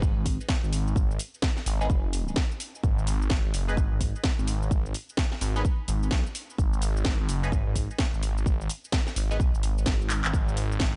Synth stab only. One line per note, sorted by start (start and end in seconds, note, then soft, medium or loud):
1.81 1.86 B3 medium
1.81 1.86 D#4 medium
1.81 1.86 G#4 medium
1.81 1.86 B4 medium
3.68 3.74 B3 medium
3.68 3.74 D#4 medium
3.68 3.74 G#4 medium
3.68 3.74 B4 medium
5.56 5.61 B3 medium
5.56 5.61 D#4 medium
5.56 5.61 G#4 medium
5.56 5.61 B4 medium
7.43 7.49 B3 medium
7.43 7.49 D#4 medium
7.43 7.49 G#4 medium
7.43 7.49 B4 medium
9.31 9.36 B3 medium
9.31 9.36 D#4 medium
9.31 9.36 G#4 medium
9.31 9.36 B4 medium